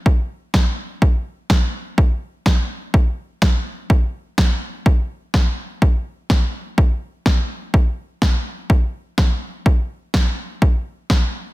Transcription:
\new DrumStaff \with { instrumentName = "Drums" } \drummode { \time 4/4 \tempo 4 = 125 bd4 <bd sn>4 bd4 <bd sn>4 | bd4 <bd sn>4 bd4 <bd sn>4 | bd4 <bd sn>4 bd4 <bd sn>4 | bd4 <bd sn>4 bd4 <bd sn>4 |
bd4 <bd sn>4 bd4 <bd sn>4 | bd4 <bd sn>4 bd4 <bd sn>4 | }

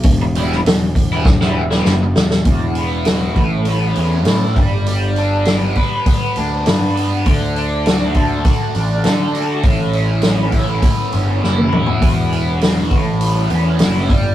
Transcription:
<<
  \new Staff \with { instrumentName = "Overdriven electric guitar" } { \time 4/4 \key e \dorian \tempo 4 = 100 r8 <e g b e'>16 r4 <e g b e'>16 r16 <e g b e'>16 r16 <e g b e'>16 r4 | e,8 b8 fis'8 a,8 b8 cis'8 e'8 g8 | g8 d'8 b8 b'8 b8 d'8 b'8 b8 | d8 d'8 fis'8 a'8 fis'8 d'8 a'8 fis'8 |
a,8 cis'8 b8 e'8 b8 cis'8 e'8 b8 | e,8 b8 fis'8 a,8 b8 cis'8 e'8 g8 | }
  \new Staff \with { instrumentName = "Picked electric bass" } { \clef bass \time 4/4 \key e \dorian e,,4 e,,2 fis,,8 e,,8 | e,,4. a,,4 e,8 a,8 g,,8~ | g,,4. r4 d,8 g,4 | d,2 r8 a,,8 d4 |
a,,2 r8 g,,8 fis,,8 e,,8 | e,,4. a,,4 e,8 fis,,8 g,,8 | }
  \new DrumStaff \with { instrumentName = "Drums" } \drummode { \time 4/4 <hho bd>8 hho16 sn16 <hho sn>8 <hho bd>8 <bd sn>16 sn8 sn16 sn8 sn16 sn16 | <hho bd>8 hho8 <hho sn>8 <hho bd>8 hho8 hho8 <hho sn>8 <hho bd>8 | hho8 hho8 <hho sn>8 <hho bd>8 <hho bd>8 hho8 <hho sn>8 hho8 | <hho bd>8 hho8 <hho sn>8 <hho bd>8 <hho bd>8 hho8 <hho sn>8 hho8 |
<hho bd>8 hho8 <hho sn>8 <hho bd>8 <hho bd>8 hho8 sn16 tommh16 toml16 tomfh16 | <hho bd>8 hho8 <hho sn>8 <hho bd>8 hho8 hho8 <hho sn>8 <hho bd>8 | }
>>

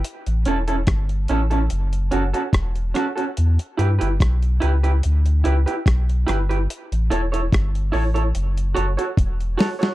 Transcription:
<<
  \new Staff \with { instrumentName = "Clean electric guitar" } { \time 4/4 \key e \dorian \tempo 4 = 72 r8 <cis' e' a'>16 <cis' e' a'>16 r8 <cis' e' a'>16 <cis' e' a'>16 r8 <cis' fis' a'>16 <cis' fis' a'>16 r8 <cis' fis' a'>16 <cis' fis' a'>16 | r8 <e' g' b'>16 <e' g' b'>16 r8 <e' g' b'>16 <e' g' b'>16 r8 <e' g' b'>16 <e' g' b'>16 r8 <e' g' b'>16 <e' g' b'>16 | r8 <e' a' cis''>16 <e' a' cis''>16 r8 <e' a' cis''>16 <e' a' cis''>16 r8 <fis' a' cis''>16 <fis' a' cis''>16 r8 <fis' a' cis''>16 <fis' a' cis''>16 | }
  \new Staff \with { instrumentName = "Sub bass" } { \clef bass \time 4/4 \key e \dorian r16 a,,16 e,,8 g,,8 a,,8 fis,,8 fis,,16 r16 e,,8 r8 | e,16 r16 g,16 g,,16 b,,8 cis,8 d,8 cis,16 r16 b,,8 g,,8 | r16 a,,16 e,,8 g,,8 a,,8 fis,,8 fis,,16 r16 e,,8 r8 | }
  \new DrumStaff \with { instrumentName = "Drums" } \drummode { \time 4/4 hh16 hh16 hh16 hh16 <hh bd ss>16 hh16 hh16 hh16 hh16 hh16 hh16 hh16 <hh bd ss>16 hh16 <hh ss>16 hh16 | hh16 hh16 hh16 hh16 <hh bd ss>16 hh16 hh16 hh16 hh16 hh16 hh16 hh16 <hh bd ss>16 hh16 <hh ss>16 hh16 | hh16 hh16 hh16 hh16 <hh bd ss>16 hh16 hho16 hh16 hh16 hh16 hh16 hh16 <hh bd>16 hh16 <hho sn>16 <hh sn>16 | }
>>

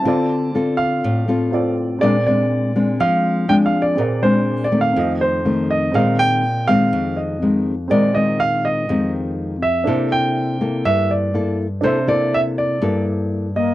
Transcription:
<<
  \new Staff \with { instrumentName = "Grand piano" } { \time 4/4 \key bes \mixolydian \tempo 4 = 122 a''4. f''2 r8 | d''8 d''4. f''4 \tuplet 3/2 { g''8 f''8 d''8~ } | d''8 c''8~ \tuplet 3/2 { c''8 d''8 f''8~ } f''8 c''4 ees''8 | f''8 g''4 f''4 ees''4 r8 |
d''8 ees''8 f''8 ees''4 r4 fes''8~ | fes''8 g''4. e''8 d''4 r8 | c''8 d''8 e''8 d''4 r4 ees''8 | }
  \new Staff \with { instrumentName = "Grand piano" } { \time 4/4 \key bes \mixolydian <c' f' a' d''>2. <c' f' a' d''>4 | <c' aes' bes' d''>1 | <c' aes' bes' d''>2 <c' f' a' ees''>2 | <c' aes' bes' ees''>1 |
<c' aes' bes' ees''>1 | <d' a' c'' e''>1 | <d' a' c'' e''>1 | }
  \new Staff \with { instrumentName = "Alto flute" } { \time 4/4 \key bes \mixolydian r1 | r1 | r1 | r1 |
r1 | r1 | r2. r8 bes8 | }
  \new Staff \with { instrumentName = "Nylon-string guitar" } { \time 4/4 \key bes \mixolydian << { <c' f' a'>4 <c' f' a'>4. <c' f' a'>4. | <aes c' d'>8 <aes c' d'>4 <aes c' d'>4. <aes c' d'>4 | r8 <aes c' d'>4 <ees a c'>4. <ees a c'>4 | <ees aes c'>4 r8 <ees aes c'>4. <ees aes c'>8 r8 |
<ees aes c'>8 <ees aes c'>4. <ees aes c'>4. r8 | <bes e' a'>4. <bes e' a'>4. <bes e' a'>8 r8 | <bes e' a'>8 <bes e' a'>4. <bes e' a'>4. r8 | } \\ { d2 a,2 | bes,2 f2 | bes,2 f,2 | bes,2 f,2 |
bes,2 f,2 | c2 g,2 | c2 g,2 | } >> }
>>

